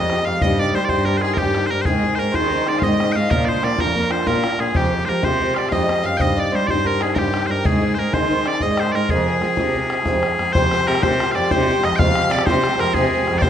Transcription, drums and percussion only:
0.02 bodhran
0.10 bodhran
0.41 bodhran
0.59 bodhran
0.89 bodhran
1.06 bodhran
1.21 bodhran
1.37 bodhran
1.46 bodhran
1.55 bodhran
1.85 bodhran
2.03 bodhran
2.34 bodhran
2.51 bodhran
2.67 bodhran
2.82 bodhran
2.92 bodhran
3.00 bodhran
3.31 bodhran
3.48 bodhran
3.63 bodhran
3.78 bodhran
3.95 bodhran
4.11 bodhran
4.27 bodhran
4.35 bodhran
4.44 bodhran
4.59 bodhran
4.75 bodhran
4.92 bodhran
5.23 bodhran
5.41 bodhran
5.56 bodhran
5.72 bodhran
5.89 bodhran
6.20 bodhran
6.38 bodhran
6.68 bodhran
6.85 bodhran
7.01 bodhran
7.16 bodhran
7.26 bodhran
7.34 bodhran
7.65 bodhran
7.83 bodhran
8.13 bodhran
8.30 bodhran
8.46 bodhran
8.61 bodhran
8.69 bodhran
8.77 bodhran
9.09 bodhran
9.26 bodhran
9.42 bodhran
9.57 bodhran
9.75 bodhran
9.90 bodhran
10.06 bodhran
10.14 bodhran
10.23 bodhran
10.39 bodhran
10.55 bodhran
10.71 bodhran
10.88 bodhran
10.95 bodhran
11.03 bodhran
11.12 bodhran
11.20 bodhran
11.36 bodhran
11.51 bodhran
11.60 bodhran
11.69 bodhran
11.84 bodhran
11.92 bodhran
11.99 bodhran
12.15 bodhran
12.31 bodhran
12.39 bodhran
12.47 bodhran
12.55 bodhran
12.64 bodhran
12.79 bodhran
12.94 bodhran
13.04 bodhran
13.11 bodhran
13.28 bodhran
13.35 bodhran
13.42 bodhran

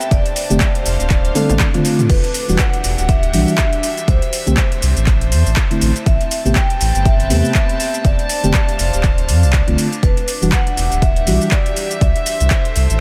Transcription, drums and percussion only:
0.01 closed hi-hat, shaker
0.11 kick, closed hi-hat, shaker
0.26 closed hi-hat
0.36 open hi-hat, shaker
0.50 closed hi-hat, shaker
0.60 kick, clap, closed hi-hat, shaker
0.75 closed hi-hat
0.86 open hi-hat, shaker
1.00 closed hi-hat, shaker
1.10 kick, clap, closed hi-hat, shaker
1.25 closed hi-hat
1.35 open hi-hat, high tom, shaker
1.50 closed hi-hat, high tom, shaker
1.59 kick, clap, closed hi-hat, mid tom, shaker
1.74 closed hi-hat, mid tom
1.85 open hi-hat, shaker
1.99 closed hi-hat, mid tom, shaker
2.10 kick, closed hi-hat, crash, shaker
2.24 closed hi-hat
2.34 open hi-hat, shaker
2.49 shaker
2.59 kick, clap, closed hi-hat, shaker
2.73 closed hi-hat
2.84 open hi-hat, shaker
2.98 closed hi-hat, shaker
3.09 kick, closed hi-hat, shaker
3.23 closed hi-hat
3.34 open hi-hat, shaker
3.48 shaker
3.58 kick, clap, closed hi-hat, shaker
3.73 closed hi-hat
3.83 open hi-hat, shaker
3.97 closed hi-hat, shaker
4.08 kick, closed hi-hat, shaker
4.22 closed hi-hat
4.33 open hi-hat, shaker
4.47 closed hi-hat, shaker
4.57 kick, clap, closed hi-hat, shaker
4.72 closed hi-hat
4.82 open hi-hat, shaker
4.97 closed hi-hat, shaker
5.07 kick, clap, closed hi-hat, shaker
5.21 closed hi-hat
5.32 open hi-hat, shaker
5.46 shaker
5.56 kick, clap, closed hi-hat, shaker
5.71 closed hi-hat
5.81 open hi-hat, shaker
5.96 closed hi-hat, shaker
6.06 kick, closed hi-hat, shaker
6.21 closed hi-hat
6.31 open hi-hat, shaker
6.46 shaker
6.55 kick, clap, closed hi-hat, shaker
6.70 closed hi-hat
6.81 open hi-hat, shaker
6.95 closed hi-hat, shaker
7.05 kick, closed hi-hat, shaker
7.20 closed hi-hat
7.30 open hi-hat, shaker
7.45 shaker
7.55 kick, clap, closed hi-hat, shaker
7.69 closed hi-hat
7.80 open hi-hat, shaker
7.94 closed hi-hat, shaker
8.05 kick, closed hi-hat, shaker
8.19 closed hi-hat
8.29 open hi-hat, shaker
8.44 closed hi-hat, shaker
8.54 kick, clap, closed hi-hat, shaker
8.69 closed hi-hat
8.79 open hi-hat, shaker
8.93 closed hi-hat, shaker
9.03 kick, clap, closed hi-hat, shaker
9.18 closed hi-hat
9.29 open hi-hat, shaker
9.43 shaker
9.53 kick, clap, closed hi-hat, shaker
9.68 closed hi-hat
9.78 open hi-hat, shaker
9.92 closed hi-hat, shaker
10.03 kick, closed hi-hat, shaker
10.17 closed hi-hat
10.28 open hi-hat, shaker
10.42 shaker
10.52 kick, clap, closed hi-hat, shaker
10.67 closed hi-hat
10.77 open hi-hat, shaker
10.92 closed hi-hat, shaker
11.02 kick, closed hi-hat, shaker
11.16 closed hi-hat
11.27 open hi-hat, shaker
11.41 shaker
11.51 kick, clap, closed hi-hat, shaker
11.66 closed hi-hat
11.76 open hi-hat, shaker
11.91 closed hi-hat, shaker
12.01 kick, closed hi-hat, shaker
12.16 closed hi-hat
12.26 open hi-hat, shaker
12.40 closed hi-hat, shaker
12.50 kick, clap, closed hi-hat, shaker
12.65 closed hi-hat
12.76 open hi-hat, shaker
12.90 closed hi-hat, shaker

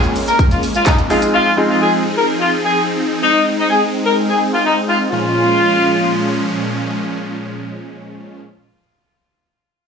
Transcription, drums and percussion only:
0.04 closed hi-hat, shaker
0.16 open hi-hat, shaker
0.28 closed hi-hat, shaker
0.39 kick, closed hi-hat, shaker
0.51 closed hi-hat, shaker
0.63 open hi-hat, shaker
0.75 closed hi-hat, shaker
0.86 kick, snare, clap, closed hi-hat, shaker
0.98 closed hi-hat, shaker
1.10 open hi-hat, shaker
1.22 closed hi-hat, shaker

